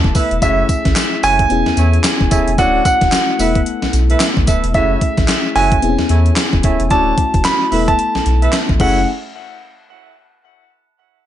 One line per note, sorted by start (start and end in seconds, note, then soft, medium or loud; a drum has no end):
0.00 0.39 A3 medium
0.00 0.39 B3 medium
0.00 0.40 E4 medium
0.00 0.40 A4 medium
0.00 0.11 A5 medium
0.04 0.13 E1 loud
0.04 kick medium
0.15 0.36 E4 medium
0.15 0.36 A4 medium
0.15 0.36 B4 medium
0.15 0.36 E5 medium
0.15 kick loud
0.15 open hi-hat medium
0.15 tambourine medium
0.31 0.40 E1 medium
0.31 closed hi-hat medium
0.41 0.64 F#1 loud
0.41 1.48 A3 medium
0.41 1.48 C#4 medium
0.41 0.68 E4 loud
0.41 1.48 E4 medium
0.41 0.67 F#4 medium
0.41 1.49 G#4 medium
0.41 0.67 A4 medium
0.41 0.68 C#5 medium
0.41 0.68 E5 loud
0.41 1.26 E5 loud
0.41 kick loud
0.41 closed hi-hat medium
0.41 tambourine medium
0.69 kick medium
0.69 closed hi-hat medium
0.69 tambourine medium
0.85 0.94 A1 loud
0.85 kick loud
0.85 snare medium
0.85 closed hi-hat soft
0.96 snare loud
0.96 clap loud
0.96 closed hi-hat medium
0.96 tambourine loud
1.23 1.45 F#1 medium
1.23 1.44 E4 medium
1.23 1.44 F#4 medium
1.23 1.44 A4 medium
1.23 1.44 C#5 medium
1.23 1.44 E5 medium
1.23 2.55 G#5 loud
1.23 open hi-hat medium
1.23 tambourine medium
1.39 kick medium
1.39 closed hi-hat soft
1.49 1.63 E1 loud
1.49 2.56 B3 medium
1.49 2.56 C#4 medium
1.49 2.57 E4 medium
1.49 2.57 G#4 medium
1.49 closed hi-hat medium
1.66 1.71 E2 soft
1.66 snare medium
1.77 1.99 E2 loud
1.77 1.98 E4 medium
1.77 1.98 G#4 medium
1.77 1.98 A4 medium
1.77 1.98 C#5 medium
1.77 1.98 E5 medium
1.77 closed hi-hat medium
1.77 tambourine medium
1.93 closed hi-hat soft
2.04 snare loud
2.04 clap loud
2.04 closed hi-hat medium
2.04 tambourine loud
2.21 2.29 E1 loud
2.21 kick medium
2.31 2.44 D1 medium
2.31 2.52 E4 medium
2.31 2.52 G#4 medium
2.31 2.52 A4 medium
2.31 2.52 C#5 medium
2.31 2.52 E5 medium
2.31 kick loud
2.31 closed hi-hat medium
2.31 tambourine medium
2.48 2.56 E1 medium
2.48 closed hi-hat medium
2.58 2.80 D1 loud
2.58 3.38 A3 medium
2.58 3.39 C#4 medium
2.58 2.84 D4 medium
2.58 3.39 E4 medium
2.58 2.84 F#4 loud
2.58 3.40 F#4 medium
2.58 2.84 A4 medium
2.58 2.84 C#5 medium
2.58 2.84 D5 loud
2.58 2.84 F#5 loud
2.58 kick loud
2.58 closed hi-hat medium
2.58 tambourine medium
2.85 3.89 F#5 medium
2.85 kick medium
2.85 closed hi-hat medium
2.85 tambourine medium
3.01 3.10 E1 medium
3.01 kick medium
3.01 snare medium
3.01 closed hi-hat soft
3.12 snare loud
3.12 clap loud
3.12 closed hi-hat medium
3.12 tambourine loud
3.39 3.61 E1 medium
3.39 4.71 A3 medium
3.39 4.72 B3 medium
3.39 3.60 E4 medium
3.39 4.72 E4 medium
3.39 3.60 A4 medium
3.39 4.73 A4 medium
3.39 3.60 B4 medium
3.39 3.60 E5 medium
3.39 open hi-hat medium
3.39 tambourine medium
3.55 kick medium
3.55 closed hi-hat soft
3.66 closed hi-hat medium
3.82 3.87 B1 soft
3.82 snare medium
3.93 4.15 B1 medium
3.93 closed hi-hat medium
3.93 tambourine medium
4.10 4.27 E4 medium
4.10 4.28 A4 medium
4.10 4.28 B4 medium
4.10 4.28 E5 medium
4.10 closed hi-hat soft
4.20 snare loud
4.20 clap medium
4.20 closed hi-hat medium
4.20 tambourine loud
4.37 4.45 A1 loud
4.37 kick medium
4.47 4.61 D1 loud
4.47 4.68 E4 medium
4.47 4.68 A4 medium
4.47 4.68 B4 medium
4.47 4.69 E5 medium
4.47 kick loud
4.47 closed hi-hat medium
4.47 tambourine medium
4.64 4.76 E1 medium
4.64 closed hi-hat medium
4.74 4.96 F#1 loud
4.74 5.80 A3 medium
4.74 5.80 C#4 medium
4.74 5.00 E4 medium
4.74 5.81 E4 medium
4.74 5.00 F#4 medium
4.74 5.81 G#4 medium
4.74 5.00 A4 medium
4.74 5.00 C#5 medium
4.74 5.58 E5 medium
4.74 5.00 E5 loud
4.74 kick loud
4.74 closed hi-hat medium
5.01 kick medium
5.01 closed hi-hat medium
5.17 5.26 A1 loud
5.17 kick loud
5.17 snare medium
5.17 closed hi-hat soft
5.28 snare loud
5.28 clap loud
5.28 closed hi-hat medium
5.55 5.77 F#1 medium
5.55 5.77 E4 medium
5.55 5.76 F#4 medium
5.55 5.76 A4 medium
5.55 5.77 C#5 medium
5.55 5.77 E5 medium
5.55 6.95 G#5 medium
5.55 open hi-hat medium
5.72 kick medium
5.72 closed hi-hat medium
5.82 5.96 E1 loud
5.82 6.88 B3 medium
5.82 5.90 C4 soft
5.82 6.89 E4 medium
5.82 6.89 G#4 medium
5.82 closed hi-hat medium
5.89 6.90 C#4 medium
5.99 6.03 E2 soft
5.99 snare medium
6.09 6.31 E2 loud
6.09 6.31 E4 medium
6.09 6.30 G#4 medium
6.09 6.31 A4 medium
6.09 6.31 C#5 medium
6.09 6.31 E5 medium
6.09 closed hi-hat medium
6.26 closed hi-hat soft
6.36 snare loud
6.36 clap loud
6.36 closed hi-hat medium
6.53 6.62 E1 medium
6.53 kick medium
6.63 6.77 D1 loud
6.63 6.85 E4 medium
6.63 6.85 G#4 medium
6.63 6.85 A4 medium
6.63 6.85 C#5 medium
6.63 6.85 E5 medium
6.63 kick loud
6.63 closed hi-hat medium
6.80 6.89 E1 loud
6.80 closed hi-hat medium
6.90 7.12 D1 loud
6.90 7.70 A3 medium
6.90 7.72 C#4 medium
6.90 7.16 D4 medium
6.90 7.72 E4 medium
6.90 7.16 F#4 medium
6.90 7.73 F#4 medium
6.90 7.16 A4 medium
6.90 7.16 C#5 medium
6.90 7.16 D5 medium
6.90 7.41 A5 loud
6.90 kick loud
6.90 closed hi-hat medium
7.18 kick medium
7.18 closed hi-hat medium
7.34 7.43 E1 medium
7.34 kick loud
7.34 closed hi-hat soft
7.45 7.89 B5 loud
7.45 snare loud
7.45 clap loud
7.45 closed hi-hat medium
7.71 7.93 E1 medium
7.71 8.77 A3 medium
7.71 8.78 B3 medium
7.71 7.93 E4 medium
7.71 8.78 E4 medium
7.71 7.93 A4 medium
7.71 8.79 A4 medium
7.71 7.93 B4 medium
7.71 7.93 E5 medium
7.71 open hi-hat medium
7.88 8.65 A5 medium
7.88 kick medium
7.88 closed hi-hat soft
7.99 closed hi-hat medium
8.15 8.20 B1 soft
8.15 snare medium
8.26 8.48 B1 loud
8.26 closed hi-hat medium
8.42 8.60 E4 medium
8.42 8.60 A4 medium
8.42 8.60 B4 medium
8.42 8.60 E5 medium
8.42 closed hi-hat soft
8.53 snare loud
8.53 clap medium
8.53 closed hi-hat medium
8.69 8.78 A1 loud
8.69 kick medium
8.80 9.05 F#1 loud
8.80 9.05 A3 medium
8.80 9.05 C#4 medium
8.80 9.01 E4 medium
8.80 9.05 E4 medium
8.80 9.01 F#4 medium
8.80 9.05 G#4 medium
8.80 9.01 A4 medium
8.80 9.01 C#5 medium
8.80 9.01 E5 loud
8.80 9.06 F#5 medium
8.80 kick loud
8.80 crash medium